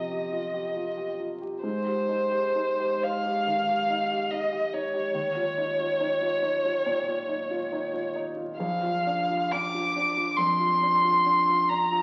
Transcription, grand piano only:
0.00 1.66 F2 soft
0.00 0.24 C3 soft
0.00 0.33 F4 soft
0.00 0.12 G4 soft
0.12 0.46 G4 soft
0.33 0.67 F4 soft
0.54 0.89 G4 soft
0.76 1.11 F4 soft
0.97 1.33 G4 soft
1.20 1.55 F4 soft
1.42 1.64 G4 soft
1.63 3.42 G#2 soft
1.86 2.22 G4 soft
2.09 2.46 D#4 soft
2.31 2.69 G4 soft
2.56 2.93 D#4 soft
2.80 3.16 G4 soft
3.03 3.38 D#4 soft
3.25 3.60 G4 soft
3.47 3.81 D#3 soft
3.69 4.03 G4 soft
3.90 4.24 D#4 soft
4.11 4.45 G4 soft
4.32 4.65 D#4 soft
4.53 4.86 G4 soft
4.74 5.07 D#4 soft
4.94 5.15 G4 soft
5.14 6.81 D#2 soft
5.36 5.70 F4 soft
5.58 5.91 D#4 soft
5.80 6.13 F4 soft
6.01 6.34 D#4 soft
6.22 6.56 F4 soft
6.43 6.77 D#4 soft
6.65 6.99 F4 soft
6.86 7.20 A#2 soft
7.08 7.42 F4 soft
7.29 7.64 D#4 soft
7.51 7.85 F4 soft
7.73 8.07 D#4 soft
7.94 8.28 F4 soft
8.16 8.51 D#4 soft
8.37 8.59 F4 soft
8.60 10.35 A#1 soft
8.83 9.21 F4 soft
9.07 9.44 D4 soft
9.30 9.66 F4 soft
9.53 9.88 D4 soft
9.74 10.09 F4 soft
9.96 10.30 D4 soft
10.17 10.51 F4 soft
10.38 10.73 F2 soft
10.60 10.95 F4 soft
10.82 11.18 D4 soft
11.04 11.40 F4 soft
11.26 11.61 D4 soft
11.49 11.83 F4 soft
11.70 12.02 D4 soft
11.92 12.02 F4 soft

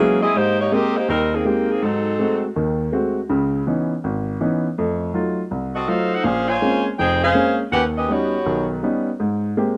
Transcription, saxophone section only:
0.00 0.21 E3 medium
0.00 0.21 A#3 medium
0.00 0.21 C#4 medium
0.00 0.21 G#4 medium
0.23 0.34 C4 medium
0.23 0.34 E4 medium
0.23 0.34 G#4 medium
0.23 0.34 D#5 loud
0.36 0.59 A#3 medium
0.36 0.60 D#4 medium
0.36 0.59 G4 medium
0.36 0.60 C5 medium
0.60 0.71 A#3 medium
0.60 0.71 D#4 medium
0.60 0.71 G4 medium
0.60 0.71 C#5 medium
0.73 0.96 C4 medium
0.73 0.96 G4 medium
0.73 0.96 A#4 medium
0.73 0.96 D#5 medium
0.97 1.09 A#3 medium
0.97 1.08 D#4 medium
0.97 1.09 G4 medium
0.97 1.09 C5 medium
1.09 1.31 G3 medium
1.09 1.31 C4 medium
1.09 1.31 D#4 medium
1.09 1.31 A#4 medium
1.34 1.45 D#3 medium
1.34 1.45 A#3 medium
1.34 1.45 C4 medium
1.34 1.46 G#4 medium
1.46 1.70 D#3 medium
1.46 1.70 A#3 medium
1.46 1.70 C4 medium
1.46 1.70 G4 medium
1.71 1.83 D#3 medium
1.71 1.83 A#3 medium
1.71 1.83 C4 medium
1.71 1.83 G#4 medium
1.84 2.44 F#3 medium
1.84 2.44 C4 medium
1.84 2.44 D#4 medium
1.84 2.44 A4 medium
5.75 5.87 C4 medium
5.75 5.87 F#4 medium
5.75 5.87 A4 medium
5.75 5.87 D#5 medium
5.89 6.12 D#4 medium
5.89 6.12 A4 medium
5.89 6.12 C5 medium
5.89 6.12 F5 medium
6.14 6.25 D#4 medium
6.14 6.25 A4 medium
6.14 6.23 C5 medium
6.14 6.25 F#5 medium
6.24 6.49 C#4 medium
6.24 6.49 G#4 medium
6.24 6.47 C5 medium
6.24 6.48 F5 medium
6.49 6.86 F4 medium
6.49 6.85 C5 medium
6.49 6.85 C#5 medium
6.49 6.86 G#5 loud
6.99 7.21 D#4 medium
6.99 7.21 G#4 medium
6.99 7.21 C5 medium
6.99 7.21 G5 medium
7.24 7.57 C#4 medium
7.24 7.57 G#4 medium
7.24 7.57 C5 medium
7.24 7.57 F5 medium
7.73 7.83 C#4 medium
7.73 7.84 G4 medium
7.73 7.84 B4 medium
7.73 7.83 F#5 loud
7.98 8.09 C#4 medium
7.98 8.09 G4 medium
7.98 8.09 B4 medium
7.98 8.09 D#5 medium
8.11 8.71 B3 medium
8.11 8.71 F#4 medium
8.11 8.71 G4 medium
8.11 8.71 C#5 medium

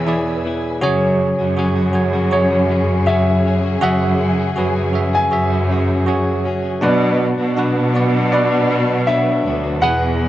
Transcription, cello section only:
0.00 0.41 E2 loud
0.82 1.35 F#2 loud
1.38 3.78 F#2 loud
3.82 4.53 F#2 loud
4.57 5.28 F#2 medium
5.32 6.41 F#2 loud
6.82 7.34 B2 loud
7.38 9.41 B2 loud
9.45 9.82 D2 medium
9.82 10.29 E2 loud

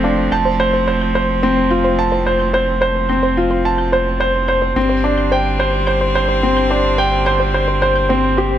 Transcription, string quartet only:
0.00 0.28 D3 medium
0.00 4.72 F3 medium
0.00 4.72 A3 medium
0.00 4.72 C4 medium
0.00 0.28 F4 medium
4.76 8.58 D3 medium
4.76 8.58 G3 medium
4.76 8.58 C4 medium

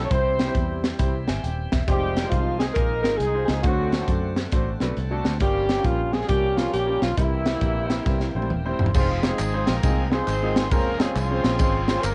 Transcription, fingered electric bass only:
0.11 0.48 C2 medium
0.55 0.93 E2 medium
0.99 1.29 C2 medium
1.28 1.41 G#1 medium
1.43 1.68 D#1 medium
1.73 1.86 E1 medium
1.88 2.25 F1 loud
2.32 2.69 C2 medium
2.76 3.05 A#1 medium
3.05 3.18 G#1 medium
3.20 3.44 C2 medium
3.49 3.62 C#2 loud
3.64 4.02 D2 loud
4.08 4.46 F#2 medium
4.53 4.77 A1 medium
4.81 4.94 B1 medium
4.97 5.21 C2 medium
5.26 5.39 D2 medium
5.41 5.78 G1 loud
5.84 6.22 A#1 medium
6.29 6.67 C2 medium
6.74 6.98 A#1 medium
7.02 7.15 B1 medium
7.18 7.55 C2 loud
7.61 7.99 A#1 medium
8.06 8.31 C2 medium
8.35 8.52 A#1 medium
8.51 8.75 D#1 medium
8.79 8.92 E1 medium
8.95 9.32 F1 loud
9.39 9.64 G#1 medium
9.68 9.81 A#1 medium
9.83 10.21 C2 medium
10.27 10.71 G#1 medium
10.71 11.09 F1 loud
11.16 11.40 C2 loud
11.44 11.57 A#1 loud
11.60 11.98 G#1 medium
12.04 12.15 G1 loud

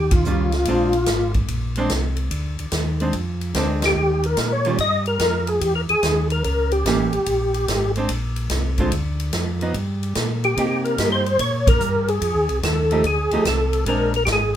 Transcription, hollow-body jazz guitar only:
0.26 0.51 D#3 soft
0.26 0.51 G3 medium
0.26 0.51 C#4 medium
0.26 0.51 F4 medium
0.68 0.92 G#3 medium
0.68 0.92 C4 medium
0.68 0.93 D4 medium
1.77 1.89 G#3 medium
1.77 1.90 C4 medium
1.77 1.90 D4 medium
3.01 3.13 G#3 medium
3.01 3.13 C4 medium
3.01 3.13 D4 medium
3.55 3.80 G#3 medium
3.55 3.80 C4 medium
3.55 3.81 D4 medium
4.65 4.77 D#3 medium
4.65 4.78 G3 medium
4.65 4.78 C#4 medium
4.65 4.78 F4 medium
6.86 7.10 E3 medium
6.86 7.11 A#3 medium
6.86 7.11 C#4 medium
6.86 7.11 G4 medium
7.97 8.08 G#3 medium
7.97 8.08 C4 medium
7.97 8.09 D4 medium
8.79 8.91 D3 medium
8.79 8.91 G#3 medium
8.79 8.91 C4 medium
8.79 8.91 F4 medium
9.62 9.73 F3 medium
9.62 9.73 B3 medium
9.62 9.74 D#4 medium
10.58 10.97 A#3 medium
10.58 10.97 D#4 medium
10.58 10.98 G4 medium
10.99 11.23 A#3 soft
10.99 11.23 D#4 soft
10.99 11.24 G4 medium
12.91 13.03 F3 medium
12.91 13.03 A3 medium
12.91 13.03 D#4 medium
12.91 13.03 G4 medium
13.33 13.44 F3 medium
13.33 13.44 A3 medium
13.33 13.45 D#4 medium
13.33 13.45 G4 medium
13.87 14.11 G#3 medium
13.87 14.12 C4 medium
13.87 14.12 D4 medium

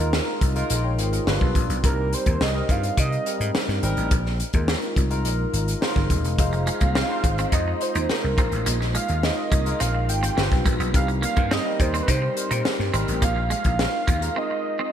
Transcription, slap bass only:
0.00 0.18 D#2 medium
0.42 0.61 C2 medium
0.70 0.98 A#1 medium
0.98 1.18 G#1 medium
1.27 1.37 G1 medium
1.41 1.51 B1 medium
1.55 1.65 A#1 medium
1.69 1.79 B1 medium
1.84 2.13 C2 medium
2.27 2.36 D#2 medium
2.40 2.60 C2 medium
2.69 2.89 G2 medium
2.97 3.17 C3 medium
3.40 3.50 G#2 medium
3.68 3.78 G2 medium
3.83 3.92 G#1 medium
3.97 4.07 A1 medium
4.11 4.41 A#1 loud
4.54 4.73 D#2 medium
4.97 5.25 C2 medium
5.25 5.44 A#1 medium
5.53 5.73 G#1 medium
5.96 6.06 G1 medium
6.10 6.25 D#1 medium
6.25 6.34 E1 medium
6.39 6.68 F1 medium
6.81 7.01 C2 medium
7.24 7.43 G#1 medium
7.52 7.72 F2 medium
7.95 8.05 D#2 medium
8.24 8.34 C2 medium
8.38 8.47 A#1 medium
8.52 8.62 A1 medium
8.66 8.96 A#1 medium
9.09 9.29 D#2 medium
9.52 9.71 C2 medium
9.81 10.09 A#1 medium
10.09 10.28 G#1 medium
10.37 10.47 G1 medium
10.52 10.61 B1 medium
10.66 10.75 A#1 medium
10.80 10.89 B1 medium
10.94 11.24 C2 medium
11.37 11.57 G2 medium
11.80 11.99 D#2 medium
12.08 12.28 C3 medium
12.51 12.61 A#2 medium
12.79 12.89 G2 medium
12.93 13.03 G#1 medium
13.08 13.22 A1 medium
13.22 13.52 A#1 medium
13.65 13.85 A#1 medium
14.08 14.27 D#2 medium

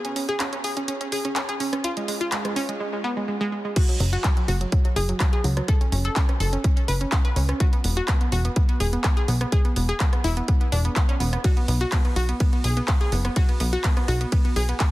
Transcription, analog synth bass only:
4.00 4.17 F#1 medium
4.48 4.65 F#1 medium
4.96 5.13 F#1 medium
5.44 5.61 C#2 medium
5.92 6.09 F#1 medium
6.40 6.57 F#1 medium
6.88 7.05 F#1 medium
7.36 7.53 C#2 medium
7.84 8.01 E1 loud
8.32 8.49 E1 loud
8.80 8.97 E1 medium
9.28 9.45 B1 medium
9.76 9.93 E1 medium
10.24 10.41 E1 medium
10.72 10.89 E1 loud
11.20 11.37 E1 medium
11.68 11.85 B1 loud
12.16 12.33 B1 loud
12.64 12.81 B1 medium
13.12 13.29 F#1 medium
13.60 13.77 B1 medium
14.08 14.25 B1 loud
14.56 14.73 B1 loud

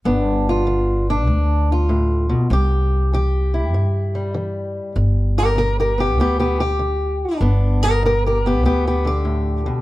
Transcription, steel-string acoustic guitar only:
0.05 0.63 G2 medium
0.05 2.49 B3 medium
0.05 1.09 D4 medium
0.49 1.09 F4 medium
0.67 1.24 D3 medium
1.10 1.70 D4 medium
1.27 1.85 D2 medium
1.72 2.53 F4 medium
1.89 2.29 A2 medium
2.29 2.51 B2 medium
2.51 3.08 C3 medium
2.51 3.13 G4 loud
3.13 3.70 E3 medium
3.13 4.97 G4 medium
3.54 4.95 E4 soft
3.74 4.31 G2 medium
4.15 5.98 G3 soft
4.34 4.92 E3 medium
4.96 5.53 G2 medium
5.38 5.47 G4 medium
5.38 5.58 A#4 medium
5.56 6.14 D3 medium
5.56 5.79 A#4 medium
5.80 5.92 G4 medium
5.80 6.00 A#4 medium
5.98 6.19 B3 soft
5.98 6.20 G4 loud
6.18 6.76 D2 medium
6.18 6.38 B3 medium
6.18 6.39 G4 medium
6.39 6.60 B3 medium
6.39 6.59 G4 medium
6.60 7.42 G4 loud
6.79 7.37 D3 medium
7.41 7.98 G2 medium
7.41 8.45 B3 medium
7.41 7.83 D4 medium
7.83 7.92 G4 medium
7.83 8.04 A#4 medium
8.03 8.60 D3 medium
8.03 8.11 G4 medium
8.03 8.25 A#4 medium
8.26 8.38 G4 medium
8.26 8.46 A#4 medium
8.46 8.64 B3 medium
8.46 8.65 G4 medium
8.63 9.21 D2 medium
8.63 8.85 B3 medium
8.63 8.85 G4 medium
8.87 9.07 B3 medium
8.87 9.06 G4 medium
9.05 9.81 D3 soft
9.05 9.81 G4 medium
9.25 9.65 A2 medium
9.66 9.81 B2 medium

